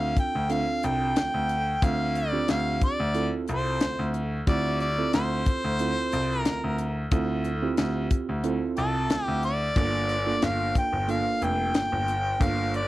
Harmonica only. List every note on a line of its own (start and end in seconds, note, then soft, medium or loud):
0.00 0.18 F5 medium
0.19 0.53 G5 loud
0.52 0.87 F5 loud
0.85 1.86 G5 loud
1.85 2.19 F5 medium
2.17 2.49 D5 medium
2.50 2.80 F5 medium
2.84 3.32 D5 medium
3.49 4.11 C5 medium
4.48 4.79 D5 loud
4.81 5.11 D5 medium
5.14 6.41 C5 loud
6.41 7.08 A#4 loud
8.78 9.25 A4 medium
9.25 9.40 G4 medium
9.45 10.46 D5 loud
10.44 10.76 F5 loud
10.78 11.12 G5 loud
11.10 11.45 F5 loud
11.43 12.44 G5 loud
12.43 12.75 F5 loud
12.75 12.88 D5 medium